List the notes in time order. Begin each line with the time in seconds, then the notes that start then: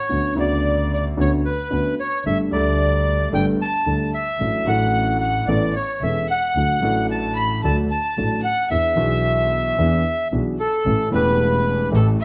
Already playing: C#5
0.09 D2 D3 B3 C#4 F#4
0.34 D2 C#3 D3 B3 F#4
0.40 D5
0.93 D5
1.17 D2 D3 B3 C#4 F#4 C#5
1.45 B4
1.70 D2 D3 B3 C#4 F#4
2.00 C#5
2.26 G1 G2 G3 A3 D4 A4 E5
2.51 D2 D3 G3 A3 D4 D5
2.55 A4
3.32 G1 G2 G3 A3 D4 A4 G5
3.61 A5
3.86 D2 D3 G3 A3 D4 A4
4.14 E5
4.39 A1 A2 F#3 A3 D4 A4
4.64 A1 A2 F#3 A3 D4 F#5
4.69 A4
5.21 F#5
5.47 A1 A2 E3 B3 C#4 A4 D5
5.72 C#5
6.00 E1 E2 E3 B3 C#4 A4 E5
6.28 F#5
6.55 D2 D3 F#3 A3 D4 A4
6.81 A1 A2 F#3 A3 D4 A4
7.10 A5
7.35 B5
7.62 D2 D3 F#3 A3 D4 A4 A5
7.89 A5
8.17 A1 A2 F#3 A3 D4 A4
8.43 F#5
8.69 E2 E3 B3 D4 G#4 E5
8.96 B1 B2 E3 B3 D4 G#4
9.78 E2 E3 B3 D4 G#4
10.32 B1 B2 E3 B3 D4 G#4
10.59 A4
10.85 A1 A2 E3 A3 C#4 G4
11.10 E1 E2 E3 A3 C#4 B4
11.15 G4 B4
11.91 A1 A2 E3 A3 C#4 G4 A4
11.96 A4
12.20 E5